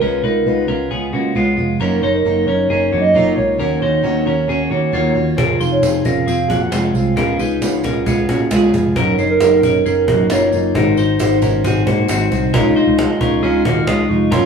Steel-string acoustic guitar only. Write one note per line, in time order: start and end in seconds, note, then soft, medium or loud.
0.01 0.24 C#3 medium
0.01 0.24 G#3 medium
0.01 0.24 B3 medium
0.01 0.22 F4 medium
0.23 0.45 G#3 soft
0.23 0.46 B3 soft
0.23 0.46 F4 soft
0.46 0.68 C#3 medium
0.46 0.69 G#3 medium
0.46 0.69 B3 medium
0.46 0.66 F4 medium
0.67 0.90 G#3 soft
0.67 0.91 B3 soft
0.67 0.90 F4 soft
0.90 1.13 C#3 medium
0.90 1.14 G#3 medium
0.90 1.13 B3 medium
0.90 1.11 F4 medium
1.12 1.34 G#3 soft
1.12 1.35 B3 medium
1.12 1.35 F4 medium
1.35 1.58 C#3 medium
1.35 1.58 G#3 medium
1.35 1.57 B3 medium
1.35 1.56 F4 loud
1.57 1.80 G#3 soft
1.57 1.81 B3 medium
1.57 1.80 F4 medium
1.80 2.02 F#3 medium
1.80 2.03 A#3 medium
1.80 2.03 D#4 medium
1.80 2.03 A#4 loud
1.80 2.01 C#5 medium
2.02 2.25 D#4 soft
2.02 2.25 A#4 soft
2.02 2.25 C#5 medium
2.24 2.47 F#3 medium
2.24 2.47 A#3 medium
2.24 2.48 D#4 medium
2.24 2.47 A#4 medium
2.24 2.45 C#5 medium
2.47 2.69 D#4 soft
2.47 2.70 A#4 soft
2.47 2.69 C#5 medium
2.69 2.92 A#3 medium
2.69 2.92 D#4 medium
2.69 2.92 A#4 medium
2.69 2.90 C#5 medium
2.91 3.14 D#4 soft
2.91 3.14 A#4 soft
2.91 3.14 C#5 soft
3.14 3.36 F#3 medium
3.14 3.37 A#3 medium
3.14 3.37 D#4 medium
3.14 3.36 A#4 medium
3.14 3.34 C#5 medium
3.36 3.59 D#4 soft
3.36 3.59 A#4 soft
3.36 3.59 C#5 soft
3.58 3.81 D#3 medium
3.58 3.82 A#3 medium
3.58 3.82 C#4 medium
3.58 3.81 F#4 medium
3.58 3.80 C#5 medium
3.81 4.03 C#4 soft
3.81 4.03 F#4 soft
3.81 4.03 C#5 soft
4.03 4.26 D#3 medium
4.03 4.26 A#3 medium
4.03 4.26 C#4 medium
4.03 4.26 F#4 medium
4.03 4.24 C#5 medium
4.25 4.48 C#4 soft
4.25 4.49 F#4 soft
4.25 4.48 C#5 medium
4.47 4.70 A#3 medium
4.47 4.71 C#4 medium
4.47 4.70 F#4 medium
4.47 4.69 C#5 medium
4.70 4.93 C#4 soft
4.70 4.93 F#4 soft
4.70 4.93 C#5 soft
4.92 5.15 D#3 medium
4.92 5.16 A#3 medium
4.92 5.16 C#4 medium
4.92 5.15 F#4 medium
4.92 5.13 C#5 medium
5.15 5.38 C#4 soft
5.15 5.38 F#4 medium
5.15 5.38 C#5 medium
5.37 5.60 F3 medium
5.37 5.60 C4 medium
5.37 5.60 F4 medium
5.37 5.58 G#4 medium
5.59 5.82 C4 soft
5.59 5.83 F4 soft
5.59 5.82 G#4 soft
5.82 6.05 F3 medium
5.82 6.05 C4 medium
5.82 6.05 F4 medium
5.82 6.03 G#4 medium
6.04 6.26 C4 soft
6.04 6.27 F4 soft
6.04 6.27 G#4 soft
6.26 6.49 F3 medium
6.26 6.50 C4 medium
6.26 6.49 F4 medium
6.26 6.47 G#4 medium
6.48 6.71 C4 soft
6.48 6.72 F4 soft
6.48 6.72 G#4 medium
6.71 6.94 F3 medium
6.71 6.95 C4 medium
6.71 6.95 F4 medium
6.71 6.93 G#4 medium
6.94 7.17 C4 soft
6.94 7.17 F4 soft
6.94 7.17 G#4 soft
7.17 7.39 C#3 medium
7.17 7.40 G#3 medium
7.17 7.40 B3 medium
7.17 7.40 F4 medium
7.17 7.39 G#4 medium
7.40 7.62 B3 soft
7.40 7.62 F4 soft
7.40 7.62 G#4 soft
7.62 7.84 C#3 medium
7.62 7.85 G#3 medium
7.62 7.85 B3 medium
7.62 7.85 F4 medium
7.62 7.83 G#4 medium
7.84 8.06 B3 soft
7.84 8.08 F4 medium
7.84 8.07 G#4 soft
8.06 8.29 G#3 medium
8.06 8.30 B3 medium
8.06 8.29 F4 medium
8.06 8.28 G#4 medium
8.29 8.52 B3 soft
8.29 8.52 F4 medium
8.29 8.51 G#4 medium
8.52 8.74 C#3 medium
8.52 8.74 G#3 medium
8.52 8.75 B3 medium
8.52 8.74 F4 loud
8.52 8.72 G#4 loud
8.73 8.96 B3 soft
8.73 8.97 F4 medium
8.73 8.96 G#4 medium
8.96 9.18 F#3 medium
8.96 9.19 C#4 medium
8.96 9.19 D#4 loud
8.96 9.17 A#4 loud
9.18 9.40 C#4 soft
9.18 9.41 D#4 medium
9.18 9.41 A#4 medium
9.41 9.63 F#3 medium
9.41 9.64 C#4 medium
9.41 9.63 D#4 medium
9.41 9.62 A#4 loud
9.63 9.85 C#4 soft
9.63 9.86 D#4 soft
9.63 9.86 A#4 medium
9.84 10.07 F#3 medium
9.84 10.08 C#4 medium
9.84 10.08 D#4 medium
9.84 10.06 A#4 medium
10.07 10.30 C#4 soft
10.07 10.30 D#4 soft
10.07 10.30 A#4 medium
10.30 10.53 F#3 medium
10.30 10.53 C#4 medium
10.30 10.53 D#4 medium
10.30 10.51 A#4 medium
10.52 10.75 C#4 soft
10.52 10.74 D#4 medium
10.52 10.75 A#4 medium
10.74 10.97 G#3 medium
10.74 10.98 D#4 medium
10.74 10.97 F#4 medium
10.74 10.96 C5 medium
10.97 11.19 D#4 medium
10.97 11.19 F#4 medium
10.97 11.20 C5 medium
11.19 11.42 G#3 medium
11.19 11.42 D#4 medium
11.19 11.42 F#4 medium
11.19 11.40 C5 medium
11.42 11.63 D#4 soft
11.42 11.65 F#4 medium
11.42 11.64 C5 medium
11.64 11.87 G#3 medium
11.64 11.87 D#4 medium
11.64 11.86 F#4 medium
11.64 11.85 C5 medium
11.86 12.08 D#4 soft
11.86 12.09 F#4 medium
11.86 12.09 C5 medium
12.08 12.31 G#3 medium
12.08 12.31 D#4 medium
12.08 12.31 F#4 loud
12.08 12.29 C5 medium
12.30 12.54 D#4 soft
12.30 12.54 F#4 medium
12.30 12.53 C5 medium
12.53 12.76 C#3 medium
12.53 12.76 F3 loud
12.53 12.76 G#3 loud
12.53 12.76 D#4 loud
12.53 12.74 F4 loud
12.75 12.97 G#3 medium
12.75 12.98 D#4 medium
12.75 12.98 F4 medium
12.97 13.20 F3 medium
12.97 13.21 G#3 medium
12.97 13.20 D#4 medium
12.97 13.19 F4 medium
13.20 13.43 G#3 soft
13.20 13.44 D#4 medium
13.20 13.43 F4 medium
13.42 13.65 C#3 medium
13.42 13.65 F3 medium
13.42 13.66 G#3 medium
13.42 13.65 D#4 medium
13.42 13.63 F4 medium
13.67 13.87 G#3 soft
13.67 13.88 D#4 medium
13.87 14.09 F3 medium
13.87 14.10 G#3 medium
13.87 14.10 D#4 medium
13.87 14.08 F4 medium
14.09 14.32 G#3 medium
14.09 14.33 D#4 medium
14.09 14.32 F4 medium
14.31 14.46 F#3 medium
14.31 14.46 A#3 medium
14.31 14.46 C#4 medium
14.31 14.46 F4 loud